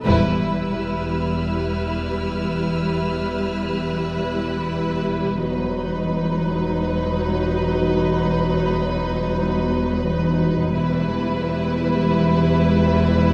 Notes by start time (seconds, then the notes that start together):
0.04 E1 E2 G3 E4 B4 E6
0.71 F6
3.94 F#6
5.38 E1 E2 F#3 D#4 B4
10.72 E1 E2 G3 E4 B4